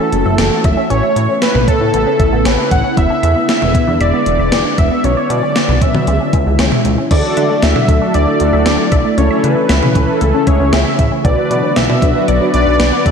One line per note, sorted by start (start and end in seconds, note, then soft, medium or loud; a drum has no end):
0.00 0.88 E3 medium
0.00 2.93 A3 medium
0.00 0.87 C#4 medium
0.00 0.87 F#4 medium
0.00 0.66 A4 loud
0.13 0.24 F#1 medium
0.13 closed hi-hat medium
0.26 0.37 F#1 loud
0.26 0.34 E5 medium
0.38 0.50 F#1 loud
0.38 snare loud
0.38 closed hi-hat medium
0.52 0.60 F#4 medium
0.64 0.76 F#1 loud
0.64 0.72 E5 medium
0.64 0.90 E5 loud
0.64 kick loud
0.64 closed hi-hat medium
0.77 0.85 C#4 medium
0.90 1.02 A1 loud
0.90 2.95 C#3 medium
0.90 2.95 B3 medium
0.90 0.98 C#4 medium
0.90 5.00 E4 medium
0.90 1.39 C#5 loud
0.90 closed hi-hat medium
1.03 1.11 E5 medium
1.16 1.28 A2 medium
1.16 closed hi-hat medium
1.29 1.37 C#4 medium
1.42 1.66 B4 loud
1.42 1.50 E5 medium
1.42 snare loud
1.42 closed hi-hat medium
1.55 1.67 A1 loud
1.55 1.63 B3 medium
1.55 mid tom medium
1.68 1.76 C#4 medium
1.68 2.47 A4 loud
1.68 kick medium
1.68 closed hi-hat medium
1.81 1.92 A2 medium
1.94 2.05 A1 medium
1.94 2.02 B3 medium
1.94 closed hi-hat medium
2.07 2.15 C#4 medium
2.20 2.31 A1 medium
2.20 2.28 E5 medium
2.20 kick medium
2.20 closed hi-hat medium
2.33 2.44 A1 loud
2.33 2.41 B3 medium
2.45 2.57 A1 loud
2.45 2.53 C#4 medium
2.45 2.71 B4 loud
2.45 snare loud
2.45 closed hi-hat medium
2.58 2.66 E5 medium
2.71 2.83 A1 loud
2.71 2.96 F#5 loud
2.71 kick loud
2.71 closed hi-hat medium
2.84 2.92 C#4 medium
2.97 3.09 E1 loud
2.97 5.02 D3 medium
2.97 5.02 G#3 medium
2.97 6.04 B3 medium
2.97 3.05 B3 medium
2.97 3.45 E5 loud
2.97 kick loud
2.97 closed hi-hat medium
3.10 3.18 D4 medium
3.23 3.35 E2 loud
3.23 3.31 E5 medium
3.23 closed hi-hat medium
3.36 3.44 B3 medium
3.49 3.97 E5 loud
3.49 snare loud
3.49 closed hi-hat medium
3.62 3.73 E1 loud
3.62 3.70 E5 medium
3.62 mid tom medium
3.75 3.83 B3 medium
3.75 kick medium
3.75 closed hi-hat medium
3.88 3.99 E2 loud
3.88 3.96 D4 medium
4.01 4.12 E1 loud
4.01 4.80 D5 loud
4.01 4.09 E5 loud
4.01 closed hi-hat medium
4.14 4.22 B3 medium
4.26 4.38 E1 loud
4.26 closed hi-hat medium
4.39 4.51 E1 loud
4.39 4.47 E5 medium
4.52 4.64 E1 loud
4.52 snare loud
4.52 closed hi-hat medium
4.65 4.73 D4 medium
4.78 4.90 E1 loud
4.78 4.86 E5 medium
4.78 5.06 E5 loud
4.78 kick loud
4.78 closed hi-hat medium
4.91 4.99 B3 medium
5.04 5.16 B1 loud
5.04 7.09 D3 medium
5.04 6.07 F#3 medium
5.04 5.12 C#4 loud
5.04 6.07 D4 medium
5.04 5.32 C#5 loud
5.04 closed hi-hat medium
5.17 5.25 D5 medium
5.30 5.41 B2 loud
5.30 5.83 D5 loud
5.30 closed hi-hat medium
5.43 5.51 C#4 medium
5.56 5.64 D5 medium
5.56 snare loud
5.56 closed hi-hat medium
5.69 5.80 B1 loud
5.69 5.77 B3 medium
5.69 mid tom medium
5.81 5.90 C#4 medium
5.81 6.59 E5 loud
5.81 kick medium
5.81 closed hi-hat medium
5.95 6.06 B2 loud
5.95 mid tom medium
6.07 6.19 C#2 loud
6.07 7.10 E3 medium
6.07 7.10 G#3 medium
6.07 6.16 G#3 medium
6.07 7.10 E4 medium
6.07 closed hi-hat medium
6.21 6.29 C#4 medium
6.33 6.45 C#2 loud
6.33 6.42 E5 medium
6.33 kick medium
6.33 closed hi-hat medium
6.46 6.58 C#2 medium
6.46 6.54 G#3 medium
6.59 6.71 C#2 loud
6.59 6.67 C#4 medium
6.59 snare loud
6.59 closed hi-hat medium
6.72 6.80 E5 medium
6.72 mid tom medium
6.85 6.97 C#2 loud
6.85 closed hi-hat medium
6.98 7.06 C#4 medium
7.11 7.23 D2 loud
7.11 9.16 D3 medium
7.11 9.16 F#3 medium
7.11 11.21 A3 medium
7.11 7.19 A3 loud
7.11 7.58 D4 medium
7.11 11.21 E4 medium
7.11 7.58 F#4 medium
7.11 7.58 A4 medium
7.11 7.64 D5 medium
7.11 kick loud
7.11 closed hi-hat medium
7.11 crash medium
7.24 7.32 D4 medium
7.37 7.49 D3 loud
7.37 7.45 E5 medium
7.37 closed hi-hat medium
7.50 7.58 A3 medium
7.62 7.74 D2 loud
7.62 8.14 E5 medium
7.62 snare loud
7.62 closed hi-hat medium
7.76 7.87 D3 loud
7.76 7.84 E5 medium
7.76 mid tom medium
7.88 8.00 D2 loud
7.88 7.97 A3 medium
7.88 8.12 D4 medium
7.88 8.12 F#4 medium
7.88 8.12 A4 medium
7.88 kick medium
7.88 closed hi-hat medium
8.02 8.10 D4 medium
8.14 8.26 D2 loud
8.14 8.39 D5 medium
8.14 8.22 E5 loud
8.14 closed hi-hat medium
8.27 8.35 A3 medium
8.27 8.82 D4 medium
8.27 8.82 F#4 medium
8.27 8.82 A4 medium
8.40 8.52 D2 loud
8.40 9.19 D5 loud
8.40 closed hi-hat medium
8.53 8.65 D2 loud
8.53 8.61 E5 medium
8.66 8.78 D2 loud
8.66 snare loud
8.66 closed hi-hat medium
8.79 8.87 D4 medium
8.92 9.04 B1 loud
8.92 9.00 E5 medium
8.92 kick loud
8.92 closed hi-hat medium
9.05 9.13 A3 medium
9.17 9.30 C#2 loud
9.17 11.23 C#3 medium
9.17 11.23 E3 medium
9.17 9.26 C#4 loud
9.17 9.65 C#4 medium
9.17 9.65 E4 medium
9.17 9.65 A4 medium
9.17 9.45 C#5 medium
9.17 closed hi-hat medium
9.31 9.39 E5 medium
9.44 9.55 C#3 loud
9.44 10.22 B4 loud
9.44 closed hi-hat medium
9.57 9.65 C#4 medium
9.69 9.81 C#2 loud
9.69 9.78 E5 medium
9.69 snare loud
9.69 closed hi-hat medium
9.83 9.94 C#3 medium
9.83 9.91 A3 medium
9.83 mid tom medium
9.95 10.07 C#2 loud
9.95 10.03 C#4 medium
9.95 10.19 C#4 medium
9.95 10.19 E4 medium
9.95 10.19 A4 medium
9.95 kick medium
9.95 closed hi-hat medium
10.21 10.33 C#2 loud
10.21 10.29 A3 medium
10.21 10.48 A4 medium
10.21 closed hi-hat medium
10.34 10.42 C#4 medium
10.34 10.89 C#4 medium
10.34 10.89 E4 medium
10.34 10.89 G#4 medium
10.47 10.59 C#2 loud
10.47 10.74 C#5 medium
10.47 10.55 E5 medium
10.47 kick medium
10.47 closed hi-hat medium
10.60 10.72 C#2 loud
10.60 10.68 A3 medium
10.73 10.85 C#2 loud
10.73 10.81 C#4 medium
10.73 11.12 E5 loud
10.73 snare loud
10.73 closed hi-hat medium
10.86 10.94 E5 medium
10.99 11.10 A1 loud
10.99 kick loud
10.99 closed hi-hat medium
11.12 11.20 C#4 medium
11.24 11.36 B1 loud
11.24 13.04 D3 medium
11.24 13.04 F#3 medium
11.24 11.33 F#3 medium
11.24 13.04 B3 medium
11.24 11.72 D4 medium
11.24 13.04 F#4 medium
11.24 11.72 F#4 medium
11.24 11.72 B4 medium
11.24 11.78 D5 loud
11.24 kick loud
11.24 closed hi-hat medium
11.38 11.46 B3 medium
11.51 11.62 B2 loud
11.51 11.59 D5 medium
11.51 closed hi-hat medium
11.64 11.72 F#3 medium
11.76 11.88 B1 loud
11.76 12.29 E5 loud
11.76 snare loud
11.76 closed hi-hat medium
11.89 12.01 B2 loud
11.89 11.97 D5 medium
11.89 mid tom medium
12.02 12.14 B1 loud
12.02 12.10 F#3 medium
12.02 12.26 D4 medium
12.02 12.26 F#4 medium
12.02 12.26 B4 medium
12.02 kick medium
12.02 closed hi-hat medium
12.15 12.23 B3 medium
12.28 12.40 B1 loud
12.28 12.53 D5 loud
12.28 12.36 D5 loud
12.28 closed hi-hat medium
12.41 12.49 F#3 medium
12.41 12.96 D4 medium
12.41 12.96 F#4 medium
12.41 12.96 B4 medium
12.54 12.66 B1 loud
12.54 13.11 D5 loud
12.54 closed hi-hat medium
12.67 12.79 B1 loud
12.67 12.75 D5 medium
12.80 12.91 B1 loud
12.80 snare loud
12.80 closed hi-hat medium
12.93 13.01 B3 medium
13.06 13.11 A1 loud
13.06 13.11 C#3 medium
13.06 13.11 E3 medium
13.06 13.11 A3 medium
13.06 13.11 C#4 medium
13.06 13.11 E4 medium
13.06 13.11 A4 medium
13.06 13.11 E5 medium
13.06 kick loud
13.06 closed hi-hat medium